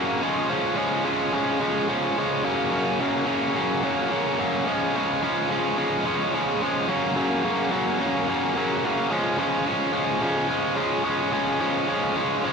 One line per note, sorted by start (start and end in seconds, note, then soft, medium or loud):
0.00 0.21 F#2 medium
0.00 0.21 C#3 medium
0.00 0.21 F#3 medium
0.00 0.21 A#3 loud
0.00 0.23 C#4 medium
0.23 0.48 C#3 medium
0.23 0.49 F3 loud
0.23 0.49 G#3 loud
0.23 0.51 C#4 loud
0.49 0.75 C#3 loud
0.49 0.76 F3 loud
0.49 0.76 G#3 medium
0.49 0.78 C#4 medium
0.77 1.03 C#3 medium
0.77 1.03 F3 loud
0.77 1.04 G#3 medium
0.77 1.05 C#4 loud
1.04 1.31 C#3 medium
1.04 1.32 F3 medium
1.04 1.32 G#3 medium
1.04 1.34 C#4 loud
1.32 1.59 C#3 medium
1.32 1.60 F3 medium
1.32 1.60 G#3 medium
1.32 1.61 C#4 loud
1.60 1.88 C#3 medium
1.60 1.88 F3 medium
1.60 1.88 G#3 medium
1.60 1.89 C#4 medium
1.89 2.16 C#3 medium
1.89 2.17 F3 loud
1.89 2.17 G#3 loud
1.89 2.19 C#4 loud
2.17 2.43 C#3 medium
2.17 2.44 F3 medium
2.17 2.44 G#3 medium
2.17 2.45 C#4 medium
2.43 2.71 F#2 medium
2.43 2.71 C#3 medium
2.43 2.71 F#3 medium
2.43 2.72 A#3 loud
2.43 2.73 C#4 loud
2.72 2.99 F#2 medium
2.72 2.99 C#3 medium
2.72 2.99 F#3 loud
2.72 3.00 A#3 loud
2.72 3.01 C#4 loud
3.00 3.25 F#2 medium
3.00 3.25 C#3 medium
3.00 3.26 F#3 medium
3.00 3.27 A#3 medium
3.00 3.28 C#4 medium
3.26 3.54 F#2 medium
3.26 3.55 C#3 medium
3.26 3.55 F#3 medium
3.26 3.55 A#3 medium
3.26 3.57 C#4 loud
3.55 3.81 F#2 medium
3.55 3.82 C#3 medium
3.55 3.82 F#3 medium
3.55 3.83 A#3 medium
3.55 3.84 C#4 medium
3.83 4.09 F#2 medium
3.83 4.10 C#3 medium
3.83 4.10 F#3 medium
3.83 4.10 A#3 medium
3.83 4.12 C#4 medium
4.10 4.38 F#2 medium
4.10 4.38 C#3 medium
4.10 4.38 F#3 medium
4.10 4.39 A#3 medium
4.10 4.40 C#4 loud
4.39 4.65 F#2 medium
4.39 4.65 C#3 medium
4.39 4.66 F#3 medium
4.39 4.66 A#3 medium
4.39 4.67 C#4 medium
4.67 4.94 C#3 medium
4.67 4.94 F3 loud
4.67 4.94 G#3 loud
4.67 4.96 C#4 loud
4.95 5.20 C#3 medium
4.95 5.21 F3 medium
4.95 5.22 G#3 loud
4.95 5.23 C#4 loud
5.21 5.48 C#3 medium
5.21 5.48 F3 medium
5.21 5.49 G#3 medium
5.21 5.51 C#4 medium
5.49 5.76 C#3 medium
5.49 5.77 F3 medium
5.49 5.77 G#3 medium
5.49 5.78 C#4 loud
5.78 6.04 C#3 medium
5.78 6.04 F3 medium
5.78 6.05 G#3 medium
5.78 6.06 C#4 loud
6.05 6.32 C#3 medium
6.05 6.33 F3 medium
6.05 6.34 G#3 medium
6.05 6.34 C#4 medium
6.33 6.60 C#3 medium
6.33 6.61 F3 loud
6.33 6.61 G#3 loud
6.33 6.62 C#4 loud
6.61 6.87 C#3 medium
6.61 6.88 F3 medium
6.61 6.88 G#3 medium
6.61 6.89 C#4 medium
6.88 7.14 F#2 medium
6.88 7.14 C#3 loud
6.88 7.15 F#3 loud
6.88 7.16 A#3 loud
6.88 7.17 C#4 loud
7.15 7.43 F#2 medium
7.15 7.43 C#3 loud
7.15 7.44 F#3 loud
7.15 7.44 A#3 loud
7.15 7.46 C#4 loud
7.45 7.70 F#2 medium
7.45 7.71 C#3 loud
7.45 7.71 F#3 medium
7.45 7.72 A#3 medium
7.45 7.73 C#4 loud
7.71 7.99 F#2 medium
7.71 8.00 C#3 medium
7.71 7.99 F#3 loud
7.71 8.00 A#3 loud
7.71 8.01 C#4 medium
8.00 8.27 F#2 medium
8.00 8.27 C#3 medium
8.00 8.28 F#3 loud
8.00 8.28 A#3 loud
8.00 8.29 C#4 medium
8.28 8.55 F#2 medium
8.28 8.55 C#3 medium
8.28 8.56 F#3 medium
8.28 8.56 A#3 medium
8.28 8.58 C#4 medium
8.56 8.82 F#2 loud
8.56 8.83 C#3 loud
8.56 8.84 F#3 loud
8.56 8.85 A#3 loud
8.56 8.85 C#4 loud
8.83 9.10 F#2 medium
8.83 9.10 C#3 medium
8.83 9.10 F#3 medium
8.83 9.11 A#3 loud
8.83 9.12 C#4 loud
9.11 9.38 C#3 medium
9.11 9.38 F3 loud
9.11 9.39 G#3 loud
9.11 9.39 C#4 loud
9.38 9.66 C#3 medium
9.38 9.66 F3 loud
9.38 9.67 G#3 medium
9.38 9.67 C#4 loud
9.67 9.92 C#3 medium
9.67 9.93 F3 medium
9.67 9.93 G#3 medium
9.67 9.94 C#4 loud
9.93 10.20 C#3 medium
9.93 10.21 F3 medium
9.93 10.22 G#3 loud
9.93 10.22 C#4 medium
10.21 10.48 C#3 medium
10.21 10.49 F3 loud
10.21 10.48 G#3 medium
10.21 10.49 C#4 loud
10.48 10.75 C#3 medium
10.48 10.76 F3 medium
10.48 10.76 G#3 loud
10.48 10.77 C#4 medium
10.76 11.03 C#3 medium
10.76 11.04 F3 medium
10.76 11.04 G#3 loud
10.76 11.04 C#4 loud
11.03 11.31 C#3 medium
11.03 11.32 F3 medium
11.03 11.32 G#3 medium
11.03 11.33 C#4 loud
11.31 11.59 C#3 loud
11.31 11.59 F3 medium
11.31 11.59 G#3 medium
11.31 11.60 C#4 loud
11.60 11.86 C#3 medium
11.60 11.86 F3 medium
11.60 11.87 G#3 loud
11.60 11.87 C#4 loud
11.87 12.14 C#3 medium
11.87 12.14 F3 medium
11.87 12.15 G#3 medium
11.87 12.15 C#4 loud
12.15 12.42 C#3 medium
12.15 12.42 F3 medium
12.15 12.43 G#3 medium
12.15 12.44 C#4 medium
12.43 12.53 C#3 medium
12.43 12.53 F3 medium
12.43 12.53 G#3 medium
12.43 12.53 C#4 medium